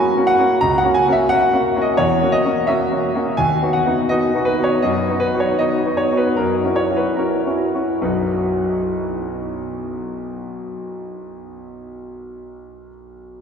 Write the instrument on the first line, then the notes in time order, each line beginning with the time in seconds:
grand piano
Already playing: C#4 F#4 G#5
0.17 A#3 C#4 F#4
0.27 F#5
0.39 A#3 C#4 F#4
0.61 C#2 A#5
0.78 F#5
0.84 A#3 C#4 F#4
0.94 G#5
1.07 A#3 C#4 F#4
1.12 E5
1.29 A#3 C#4 F#4 F#5
1.53 A#3 C#4 F#4
1.76 A#3 C#4 F#4
1.82 D#5
1.97 E2 C#5
2.22 A#3 C#4 F#4
2.32 D#5
2.45 A#3 C#4 F#4
2.67 A#3 C#4 F#4 E5
2.91 A#3 C#4 F#4
3.15 A#3 C#4 F#4
3.37 D#2 G#5
3.62 B3 D#4 F#4
3.73 F#5
3.86 B3 D#4 F#4
4.09 B3 D#4 F#4 D#5
4.35 B3 D#4 F#4
4.45 B4
4.59 B3 D#4 F#4
4.64 C#5
4.82 F#2 D#5
5.09 B3 D#4 F#4
5.20 B4
5.34 B3 D#4 F#4
5.40 C#5
5.59 B3 D#4 F#4 D#5
5.86 B3 D#4 F#4
5.97 C#5
6.11 B3 D#4 F#4
6.17 B4
6.36 F#2 A#4
6.64 C#4 E4 F#4
6.76 C#5
6.90 C#4 E4 F#4
6.97 B4
7.16 C#4 E4 F#4 A#4
7.46 C#4 E4 F#4
7.74 C#4 E4 F#4
8.02 B1 F#2 F#3 B3 D#4 F#4 B4